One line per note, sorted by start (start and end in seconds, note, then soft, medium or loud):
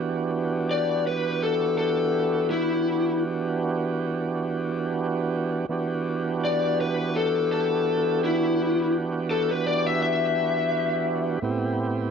0.00 5.65 E3 medium
0.00 5.65 B3 medium
0.00 5.66 D4 medium
0.00 5.66 F#4 medium
0.00 5.67 G4 medium
0.71 1.04 D5 medium
1.07 1.40 B4 medium
1.43 1.76 A4 medium
1.78 2.46 A4 medium
2.51 3.19 E4 medium
5.69 11.38 E3 medium
5.69 11.39 B3 medium
5.69 11.39 D4 medium
5.69 11.39 F#4 medium
5.69 11.40 G4 medium
6.45 6.78 D5 medium
6.81 7.14 B4 medium
7.16 7.50 A4 medium
7.52 8.20 A4 medium
8.24 8.92 E4 medium
9.31 9.49 A4 medium
9.51 9.66 B4 medium
9.66 9.87 D5 medium
9.87 10.01 E5 medium
10.02 11.40 E5 medium
11.42 12.11 A2 medium
11.42 12.11 B3 medium
11.42 12.11 C4 medium
11.42 12.11 E4 medium
11.42 12.11 G4 medium